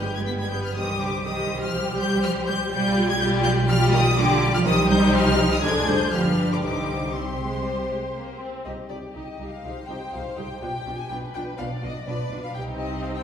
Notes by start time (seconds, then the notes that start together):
Already playing: G1 G4 B4
0.01 G3 G#3 G6
0.14 G#3 G#6
0.27 G3 B3 B6
0.39 G#3 G#6
0.50 G3 B3 G6
0.63 F3 F6
0.75 C2 D#3 G3 G4 C5 D#6
1.00 D3 D6
1.24 D#3 G3 G4 C5 D#6
1.62 F3 F6
1.98 G3 G6
2.23 F3 F6
2.47 G3 G6
2.71 B1 G3 F4 G4 D5 G6
3.07 G#3 G#6
3.19 G3 F4 G4 D5 G6
3.43 G3 G6
3.67 F3 G3 F4 G4 D5 F6
3.92 D#3 D#6
4.16 D3 G3 F4 G4 D5 D6
4.54 F3 F6
4.65 C2 D#3 G3 D#4 G4 C5 D#6
4.89 G3 G6
5.14 F3 F6
5.50 D#3 D#6
5.63 F1 D3 G#3 D4 G#4 D5 G#6
5.87 G3 C5 G6
6.12 G1 F3 G3 D4 G4 B4 F6
6.50 D3 D6
6.62 C2 D3 G3 D#4 G4 C5 D6
7.13 C3 C4 G4 C5 C6
7.39 G#3
7.65 G3
7.89 G#3
8.15 A#3
8.40 C4
8.65 C2 D#4 G4 D#5
8.89 C2 D#4 G4 D5
9.13 C2 D#4 G4 D#5
9.39 C2 D#4 G4
9.50 F5
9.64 C2 D#4 G4 C5
9.87 C2 D#4 G4 G5
10.12 C2 D#4 G4 F5
10.37 C2 D#4 G4 G5
10.61 B1 B2 D4 F4 G4 G5
10.86 B1 B2 D4 F4
10.98 G#5
11.08 B1 B2 D4 F4 B4 G5
11.34 B1 B2 D4 F4 G5
11.58 B1 B2 D4 F4 D5 F5
11.82 B1 B2 D4 F4 D#5
12.06 B1 B2 D4 F4 B4 D5
12.30 B1 B2 D4 F4
12.43 F5
12.54 C2 C3 C4 D#4 G4 G5
12.78 D#5
13.02 C5 F5
13.15 G5